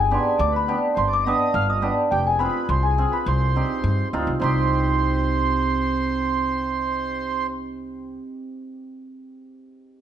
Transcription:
Already playing: G1 G#4 G#5
0.11 B3 D4 G4 C6
0.38 D2 D5 D6
0.51 B4
0.56 B5
0.68 B3 D4 G4
0.94 G1 C5
0.98 C6
1.07 D5
1.13 D6
1.24 B3 D4 G4 D#5
1.28 D#6
1.54 G1 F5 F6
1.68 D#5 D#6
1.82 B3 D4 G4
2.11 F1 G4 G5
2.26 G#4 G#5
2.39 C4 F4 G#4 B4 B5
2.69 C2 C5 C6
2.83 G#4 G#5
2.98 C4 F4 G#4
3.12 B4 B5
3.26 C2 C5 C6
3.56 C4 D#4 G4
3.84 G2
4.13 D2 C4 D#4 F4
4.27 C2
4.40 C2 C4 D#4 G4 C5 C6

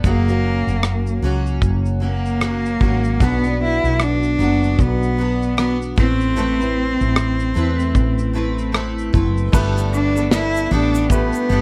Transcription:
0.04 F#1 F#2 C#3 F#3 A#3 C#4 F#4, kick, shaker
0.28 F#3 A#3 C#4 F#4, shaker
0.67 F#1, shaker
0.83 cross-stick, shaker
1.07 shaker
1.22 C#2 F#3 A#3 C#4 F#4
1.46 shaker
1.62 F#1, kick, shaker
1.86 shaker
2.00 F#3 A#3 C#4 F#4
2.05 A#3
2.26 shaker
2.41 F#3 A#3 C#4 F#4, cross-stick, shaker
2.66 shaker
2.80 G#1 F#3 A#3 C#4 F#4, kick
3.04 shaker
3.20 B1 B2 F#3 B3 D4 F#4, kick, shaker
3.44 B3 D4 F#4, shaker
3.64 E4
3.84 B1, shaker
4.00 D4, cross-stick, shaker
4.23 shaker
4.39 F#1 F#3 B3 D4 F#4, shaker
4.63 shaker
4.79 B1 B3, kick, shaker
5.03 shaker
5.17 F#3 B3 D4 F#4
5.42 shaker
5.57 F#3 B3 D4 F#4, cross-stick, shaker
5.82 shaker
5.96 A1 A3 C4 E4 B4, kick, shaker
6.21 shaker
6.36 A2 E3 A3 C4 E4 B4, shaker
6.59 A3 C4 E4 B4, shaker
7.01 A1, shaker
7.16 cross-stick, shaker
7.39 shaker
7.54 E2 A3 C4 E4 B4, shaker
7.79 shaker
7.95 A1, kick, shaker
8.18 shaker
8.33 A3 C4 E4 B4
8.58 shaker
8.72 A3 C4 E4 B4, cross-stick, shaker
8.99 shaker
9.13 F#1 A3 C4 E4 B4, kick, shaker
9.37 shaker
9.52 G1 G3 A3 B3 D4 G4 A4 B4, kick, crash, shaker
9.77 shaker
9.94 D4, shaker
10.15 B3 D4 A4, shaker
10.31 E4, snare, shaker
10.54 shaker
10.56 shaker
10.66 E4
10.71 A1 G3 B3 D4 A4
10.94 shaker
11.10 A3 B3 G4 B4, kick, shaker
11.12 shaker
11.33 shaker
11.35 shaker
11.49 G1 G3 B3 D4 A4

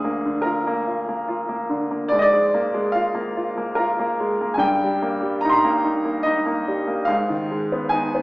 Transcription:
Already playing: D2 D3 G#4
0.04 A#3
0.25 D3
0.42 F4 A#4
0.67 A#3
0.87 F4
1.08 A#3
1.28 F4
1.49 A#3
1.69 D3
1.91 A#3
2.08 G#2 D5
2.19 D5 D#5
2.33 G#3
2.54 A#3
2.74 G#3
2.92 F4 F5
3.15 A#3
3.37 F4
3.57 A#3
3.75 F4 A#4
3.99 A#3
4.20 G#3
4.41 A#3
4.54 G2 G#5
4.59 G5
4.84 G3
5.02 A#3
5.22 G3
5.41 D#4 A#5
5.49 A#5 C6
5.64 A#3
5.84 D#4
6.05 A#3
6.23 D#4 D#5
6.46 A#3
6.68 G3
6.87 A#3
7.05 G#2 F5
7.29 D#3
7.51 G#3
7.72 B3
7.89 D#4 G#5
8.15 B3

